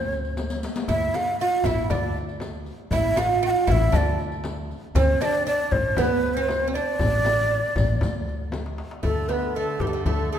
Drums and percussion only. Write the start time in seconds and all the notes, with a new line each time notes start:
0.01 darbuka ka
0.12 riq, darbuka ka
0.25 riq, darbuka ka
0.37 riq, darbuka tek, frame drum
0.50 riq, darbuka ka
0.63 riq, darbuka tek
0.76 riq, darbuka ka
0.88 riq, frame drum, darbuka dum
1.14 riq, darbuka tek, frame drum
1.39 riq, darbuka ka
1.64 riq, frame drum, darbuka dum
1.78 darbuka ka
1.90 riq, frame drum, darbuka dum
2.03 darbuka ka
2.16 riq
2.29 riq, darbuka ka
2.40 riq, darbuka tek, frame drum
2.66 riq
2.91 riq, frame drum, darbuka dum
3.16 riq, darbuka tek, frame drum
3.43 riq, darbuka ka
3.67 riq, frame drum, darbuka dum
3.93 riq, frame drum, darbuka dum
4.07 darbuka ka
4.19 riq
4.32 riq, darbuka ka
4.44 riq, darbuka tek, frame drum
4.71 riq
4.95 riq, frame drum, darbuka dum
5.21 riq, frame drum
5.47 riq, darbuka ka
5.72 frame drum, darbuka dum
5.85 darbuka ka
5.97 riq, frame drum, darbuka dum
6.11 darbuka ka
6.25 riq
6.36 riq, darbuka ka
6.48 riq, darbuka tek, frame drum
6.75 riq
6.99 riq, frame drum, darbuka dum
7.25 riq, darbuka tek, frame drum
7.51 riq, darbuka ka
7.76 riq, frame drum, darbuka dum
7.89 riq, darbuka ka
8.01 riq, frame drum, darbuka dum
8.15 darbuka ka
8.28 riq, darbuka ka
8.41 darbuka ka
8.52 riq, darbuka tek, frame drum
8.66 darbuka ka
8.78 riq, darbuka tek
8.91 darbuka ka
9.03 frame drum, darbuka dum
9.29 darbuka tek, frame drum
9.56 darbuka ka
9.80 frame drum, darbuka dum
10.06 frame drum, darbuka dum